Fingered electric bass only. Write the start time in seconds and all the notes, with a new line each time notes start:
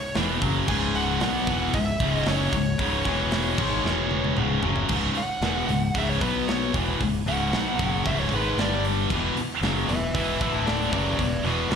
0.16 E1
0.42 F#1
0.68 C#1
1.21 B1
1.46 E1
1.74 C#1
2.00 C#1
2.26 F#1
2.52 C#1
2.79 C#1
3.06 E1
3.58 G#1
3.85 E1
4.38 C#1
4.64 F#1
4.90 C#1
5.16 muted fingered electric bass stroke
5.41 E1
5.68 C#1
5.95 C#1
6.21 B1
6.74 E1
7.01 C#1
7.26 C#1
7.53 B1
7.79 F#1
8.06 C#1
8.32 G#1
8.58 G1
9.10 E1
9.61 F#1
9.88 E1
10.14 E1
10.41 D1
10.92 F#1
11.18 E1
11.44 E1
11.69 D1